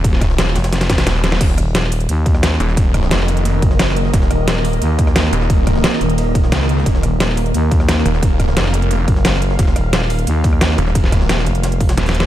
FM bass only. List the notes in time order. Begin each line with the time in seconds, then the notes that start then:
0.56 F1
1.58 D#1
2.09 D#2
3.62 F#1
4.31 D#1
4.82 D#2
6.01 D#1
7.03 D#1
7.54 D#2
9.08 F#1
9.76 D#1
10.27 D#2
11.46 F1